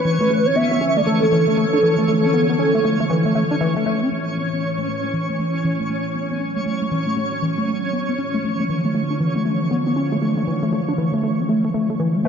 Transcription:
Already playing: synth texture C#4 C#5, soft synth lead B4
0.05 ambient pad D3 E3 F3, acid bass E3
0.21 acid bass A3
0.30 acid bass A3
0.46 acid bass C#4, soft synth lead C#5
0.55 acid bass B3, soft synth lead E5
0.71 acid bass B3
0.81 acid bass C#4
0.97 acid bass A3, soft synth lead D5
1.06 acid bass A3, soft synth lead A4
1.22 acid bass A3
1.32 acid bass E3
1.48 acid bass A3
1.57 acid bass A3
1.73 acid bass D4
1.83 acid bass E3
1.98 acid bass A3
2.08 acid bass A3
2.24 acid bass C#4
2.34 acid bass B3
2.49 acid bass B3
2.59 acid bass C#4
2.75 acid bass A3
2.84 acid bass A3
3.00 acid bass A3
3.10 acid bass E3
3.26 acid bass A3
3.35 acid bass A3
3.51 acid bass D4
3.61 acid bass E3
3.76 acid bass A3
3.86 acid bass A3
4.02 acid bass C#4
4.11 ambient pad A2 E3 C#4, acid bass A3, synth texture C#4 C#5
4.27 acid bass C#4
4.37 acid bass B3
4.53 acid bass B3
4.62 acid bass C#4
4.78 acid bass A3
4.88 acid bass A3
5.04 acid bass A3
5.13 acid bass E3
5.29 acid bass A3
5.39 acid bass A3
5.54 acid bass C#4
5.64 acid bass E3
5.80 acid bass A3
5.89 acid bass A3
6.05 acid bass C#4
6.15 ambient pad F#3, acid bass B3
6.31 acid bass B3
6.40 acid bass C#4
6.56 acid bass A3
6.66 acid bass A3
6.82 acid bass A3
6.91 acid bass E3
7.07 acid bass A3
7.17 acid bass A3
7.32 acid bass C#4
7.42 acid bass E3
7.58 acid bass A3
7.67 acid bass A3
7.83 acid bass C#4
7.93 acid bass B3
8.09 acid bass B3
8.18 ambient pad D3 E3 F3, acid bass C#4
8.34 acid bass A3
8.44 acid bass A3
8.59 acid bass A3
8.69 acid bass E3
8.85 acid bass A3
8.95 acid bass A3
9.10 acid bass D4
9.20 acid bass E3
9.36 acid bass A3
9.45 acid bass A3
9.61 acid bass C#4
9.71 acid bass B3
9.87 acid bass B3
9.96 acid bass C#4
10.12 acid bass A3
10.22 acid bass A3
10.37 acid bass A3
10.47 acid bass E3
10.63 acid bass A3
10.73 acid bass A3
10.88 acid bass D4
10.98 acid bass E3
11.14 acid bass A3
11.23 acid bass A3
11.39 acid bass C#4
11.49 acid bass A3
11.65 acid bass A3
11.74 acid bass A3
11.90 acid bass A3
12.00 acid bass E3
12.15 acid bass A3
12.25 ambient pad A2 E3 C#4, acid bass A3, soft synth lead B4

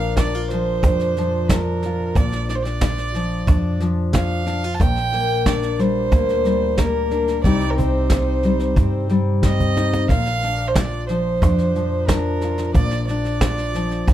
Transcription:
Already playing: upright bass A#1, steel-string acoustic guitar A#2 F3 D4 F4 A#4, fiddle F5
0.17 steel-string acoustic guitar D4, fiddle D5, kick, snare, cajon slap
0.35 steel-string acoustic guitar F4
0.50 steel-string acoustic guitar F3, fiddle C5, snare
0.83 upright bass F2, steel-string acoustic guitar D4, kick, cajon bass, snare, cajon slap
0.99 snare
1.17 steel-string acoustic guitar F3, snare
1.49 steel-string acoustic guitar D4, fiddle A#4, kick, snare, cajon slap
1.82 steel-string acoustic guitar F4, snare
2.00 cajon slap
2.15 upright bass A#1, steel-string acoustic guitar A#2, fiddle D5, kick, cajon bass, snare, cajon slap
2.32 snare, cajon slap
2.49 steel-string acoustic guitar D4, fiddle D5, snare
2.55 fiddle C5
2.63 fiddle D5, snare
2.81 steel-string acoustic guitar F4, kick, snare, cajon slap
2.98 snare
3.14 steel-string acoustic guitar F3, snare
3.47 upright bass F2, steel-string acoustic guitar D4, kick, cajon bass, snare, cajon slap
3.80 steel-string acoustic guitar F3, snare
4.13 steel-string acoustic guitar D4, fiddle F5, kick, snare, cajon slap
4.46 steel-string acoustic guitar D4, snare
4.64 steel-string acoustic guitar F4
4.74 fiddle A5
4.79 upright bass A#1, steel-string acoustic guitar A#2, fiddle G5, kick, cajon bass, snare, cajon slap
4.96 snare, cajon slap
5.12 steel-string acoustic guitar A#3, snare
5.46 steel-string acoustic guitar D4, fiddle D5, kick, cajon slap, snare
5.62 snare
5.79 steel-string acoustic guitar G3, fiddle C5, snare
6.11 upright bass D2, steel-string acoustic guitar A#3, kick, cajon bass, snare, cajon slap
6.29 snare
6.45 steel-string acoustic guitar G3, snare
6.78 steel-string acoustic guitar A#3, fiddle A#4, kick, snare, cajon slap
7.11 steel-string acoustic guitar D4, snare
7.28 snare, cajon slap
7.43 upright bass C2, steel-string acoustic guitar C3 G3 C4 D#4 G4, fiddle D5, kick, cajon bass, snare, cajon slap
7.61 snare, cajon slap
7.70 fiddle A#4
7.77 steel-string acoustic guitar C4, fiddle C5, cajon bass, snare
8.10 steel-string acoustic guitar D#4, kick, snare, cajon slap
8.43 steel-string acoustic guitar G3, snare, cajon slap
8.59 snare, cajon slap
8.76 upright bass G2, steel-string acoustic guitar C4, kick, cajon bass, snare, cajon slap
8.94 cajon slap
9.09 steel-string acoustic guitar G3, snare
9.43 steel-string acoustic guitar C4, fiddle D#5, kick, cajon bass, snare
9.60 cajon bass
9.76 steel-string acoustic guitar D#4, snare, cajon slap
9.93 cajon slap
10.09 upright bass A#1, steel-string acoustic guitar A#2, fiddle F5, kick, cajon bass, snare, cajon slap
10.26 snare, cajon slap
10.42 steel-string acoustic guitar D4, snare
10.68 fiddle C5
10.75 steel-string acoustic guitar F4, fiddle D5, kick, snare, cajon slap
11.07 steel-string acoustic guitar F3, fiddle C5, snare
11.42 upright bass F2, steel-string acoustic guitar D4, kick, cajon bass, snare, cajon slap
11.59 snare
11.75 steel-string acoustic guitar F3, snare
12.07 fiddle A#4, kick, snare, cajon slap
12.11 steel-string acoustic guitar D4
12.41 steel-string acoustic guitar F4, snare
12.58 snare, cajon slap
12.74 upright bass A#1, steel-string acoustic guitar A#2, fiddle D5, kick, cajon bass, snare, cajon slap
12.91 snare, cajon slap
13.08 steel-string acoustic guitar D4, fiddle D5, snare
13.25 snare
13.41 steel-string acoustic guitar F4, kick, cajon slap, snare
13.58 snare
13.74 steel-string acoustic guitar F3, snare
13.91 snare
14.07 upright bass F2, steel-string acoustic guitar D4, kick, cajon bass, snare, cajon slap

